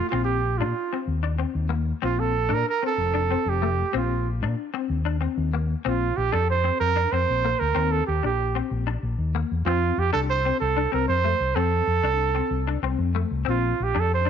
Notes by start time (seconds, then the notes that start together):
0.09 A#1 C4 F4
0.24 G4
0.58 A#2 D4 F4
0.93 C4
1.07 D#2
1.23 D4
1.39 C4
1.55 D#2
1.69 A#3
2.02 A#1 C4 F4
2.20 A4
2.49 A#2 D4
2.54 A#4
2.69 A#4
2.83 C4 A4
2.98 F1
3.14 D4
3.31 C4
3.46 F1 G4
3.62 A3
3.93 A#1 C4 F4
4.42 A#2 D4
4.74 C4
4.90 D#2
5.05 D4
5.21 C4
5.38 D#2
5.53 A#3
5.85 A#1 C4 F4
6.17 A#1 G4
6.32 F2 D4 A4
6.49 C5
6.64 C4
6.80 F2 A#4
6.96 D4
7.12 F2 C4 C5
7.30 A#1
7.45 A#3
7.59 D2 A#4
7.75 D#2 C4
7.91 A4
8.07 D#2 G4
8.23 A#1 D4 G4
8.55 C4
8.71 A#1
8.87 D4
9.03 A#1
9.18 D#2
9.35 A#3
9.51 E2
9.66 F2 C4 F4
9.98 F2 G4
10.13 C2 D4 A4
10.30 C5
10.45 C4
10.60 C2 A4
10.77 D4
10.92 C2 C4 A#4
11.08 F2 C5
11.24 A3
11.40 C2
11.55 F2 C4 A4
11.87 F2
12.03 C2 D4
12.35 C4
12.51 C2
12.67 D4
12.83 C2 C4
12.99 F2
13.15 A3
13.31 C2
13.45 A#1 C4
13.50 F4
13.80 A#1 G4
13.95 F2 D4
14.00 A4
14.14 C5
14.25 D4